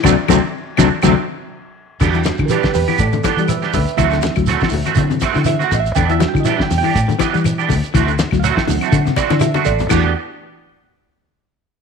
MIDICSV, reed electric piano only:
0, 0, Header, 1, 2, 480
1, 0, Start_track
1, 0, Key_signature, 1, "minor"
1, 0, Tempo, 492611
1, 37, Time_signature, 4, 2, 24, 8
1, 11516, End_track
2, 0, Start_track
2, 0, Title_t, "Reed electric piano"
2, 0, Program_c, 0, 4
2, 45, Note_on_c, 0, 60, 98
2, 46, Note_on_c, 0, 62, 93
2, 46, Note_on_c, 0, 66, 101
2, 127, Note_off_c, 0, 60, 0
2, 127, Note_off_c, 0, 62, 0
2, 128, Note_off_c, 0, 66, 0
2, 285, Note_on_c, 0, 66, 106
2, 288, Note_on_c, 0, 62, 102
2, 289, Note_on_c, 0, 60, 99
2, 367, Note_off_c, 0, 66, 0
2, 369, Note_off_c, 0, 60, 0
2, 369, Note_off_c, 0, 62, 0
2, 764, Note_on_c, 0, 66, 102
2, 768, Note_on_c, 0, 62, 99
2, 769, Note_on_c, 0, 60, 108
2, 847, Note_off_c, 0, 66, 0
2, 849, Note_off_c, 0, 62, 0
2, 850, Note_off_c, 0, 60, 0
2, 1005, Note_on_c, 0, 60, 106
2, 1006, Note_on_c, 0, 62, 101
2, 1006, Note_on_c, 0, 66, 103
2, 1087, Note_off_c, 0, 60, 0
2, 1088, Note_off_c, 0, 62, 0
2, 1088, Note_off_c, 0, 66, 0
2, 1956, Note_on_c, 0, 55, 55
2, 1963, Note_on_c, 0, 62, 46
2, 1970, Note_on_c, 0, 66, 58
2, 2393, Note_on_c, 0, 70, 54
2, 2428, Note_off_c, 0, 70, 0
2, 2438, Note_on_c, 0, 67, 72
2, 2439, Note_on_c, 0, 71, 83
2, 2642, Note_off_c, 0, 55, 0
2, 2646, Note_off_c, 0, 62, 0
2, 2650, Note_off_c, 0, 66, 0
2, 2658, Note_off_c, 0, 67, 0
2, 2669, Note_off_c, 0, 71, 0
2, 2669, Note_on_c, 0, 67, 70
2, 2680, Note_on_c, 0, 71, 83
2, 2898, Note_off_c, 0, 67, 0
2, 2913, Note_off_c, 0, 71, 0
2, 2917, Note_on_c, 0, 69, 75
2, 2926, Note_on_c, 0, 74, 81
2, 3142, Note_off_c, 0, 69, 0
2, 3150, Note_off_c, 0, 74, 0
2, 3153, Note_on_c, 0, 69, 63
2, 3161, Note_on_c, 0, 74, 70
2, 3380, Note_off_c, 0, 69, 0
2, 3394, Note_off_c, 0, 74, 0
2, 3394, Note_on_c, 0, 71, 72
2, 3399, Note_on_c, 0, 76, 76
2, 3621, Note_off_c, 0, 71, 0
2, 3633, Note_off_c, 0, 76, 0
2, 3645, Note_on_c, 0, 71, 69
2, 3648, Note_on_c, 0, 76, 80
2, 3862, Note_on_c, 0, 54, 55
2, 3864, Note_on_c, 0, 60, 48
2, 3865, Note_off_c, 0, 76, 0
2, 3867, Note_off_c, 0, 71, 0
2, 3869, Note_on_c, 0, 64, 58
2, 3877, Note_on_c, 0, 76, 94
2, 4557, Note_off_c, 0, 54, 0
2, 4558, Note_off_c, 0, 60, 0
2, 4561, Note_off_c, 0, 64, 0
2, 4812, Note_off_c, 0, 76, 0
2, 4825, Note_on_c, 0, 54, 50
2, 4828, Note_on_c, 0, 60, 44
2, 4834, Note_on_c, 0, 64, 55
2, 5050, Note_off_c, 0, 54, 0
2, 5051, Note_off_c, 0, 60, 0
2, 5055, Note_off_c, 0, 64, 0
2, 5324, Note_on_c, 0, 76, 98
2, 5479, Note_off_c, 0, 76, 0
2, 5496, Note_on_c, 0, 78, 85
2, 5597, Note_on_c, 0, 75, 60
2, 5634, Note_off_c, 0, 75, 0
2, 5646, Note_off_c, 0, 78, 0
2, 5647, Note_on_c, 0, 76, 91
2, 5800, Note_on_c, 0, 79, 86
2, 5801, Note_off_c, 0, 76, 0
2, 5916, Note_on_c, 0, 75, 68
2, 5950, Note_off_c, 0, 75, 0
2, 5950, Note_on_c, 0, 76, 100
2, 5958, Note_off_c, 0, 79, 0
2, 6031, Note_on_c, 0, 55, 57
2, 6035, Note_on_c, 0, 62, 53
2, 6036, Note_on_c, 0, 66, 66
2, 6112, Note_off_c, 0, 76, 0
2, 6121, Note_on_c, 0, 79, 92
2, 6239, Note_on_c, 0, 75, 66
2, 6273, Note_off_c, 0, 75, 0
2, 6278, Note_off_c, 0, 79, 0
2, 6285, Note_on_c, 0, 76, 92
2, 6440, Note_off_c, 0, 76, 0
2, 6454, Note_on_c, 0, 79, 91
2, 6594, Note_off_c, 0, 79, 0
2, 6606, Note_on_c, 0, 79, 98
2, 6722, Note_off_c, 0, 55, 0
2, 6724, Note_off_c, 0, 62, 0
2, 6724, Note_off_c, 0, 66, 0
2, 7071, Note_off_c, 0, 79, 0
2, 8180, Note_on_c, 0, 77, 76
2, 8210, Note_off_c, 0, 77, 0
2, 8223, Note_on_c, 0, 78, 110
2, 8441, Note_on_c, 0, 54, 58
2, 8450, Note_on_c, 0, 60, 50
2, 8452, Note_on_c, 0, 64, 61
2, 8771, Note_off_c, 0, 54, 0
2, 8775, Note_off_c, 0, 60, 0
2, 8777, Note_off_c, 0, 64, 0
2, 8911, Note_off_c, 0, 78, 0
2, 8933, Note_on_c, 0, 74, 83
2, 9161, Note_off_c, 0, 74, 0
2, 9168, Note_on_c, 0, 76, 88
2, 9398, Note_off_c, 0, 76, 0
2, 9404, Note_on_c, 0, 69, 84
2, 9413, Note_on_c, 0, 74, 88
2, 9626, Note_off_c, 0, 69, 0
2, 9640, Note_off_c, 0, 74, 0
2, 9652, Note_on_c, 0, 57, 75
2, 9654, Note_on_c, 0, 66, 89
2, 9657, Note_on_c, 0, 52, 75
2, 9657, Note_on_c, 0, 62, 71
2, 9870, Note_off_c, 0, 57, 0
2, 9871, Note_off_c, 0, 66, 0
2, 9873, Note_off_c, 0, 52, 0
2, 9873, Note_off_c, 0, 62, 0
2, 11516, End_track
0, 0, End_of_file